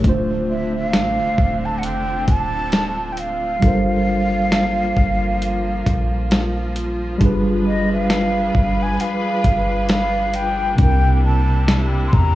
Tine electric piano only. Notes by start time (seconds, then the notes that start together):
0.01 D3 A3 D4
0.07 F4 C5
3.59 G3 D4 F4
3.64 A4 A#4 C5
7.18 G3 D4 F4
7.24 G#4 B4
10.76 C3 C4 D4
10.82 E4 A#4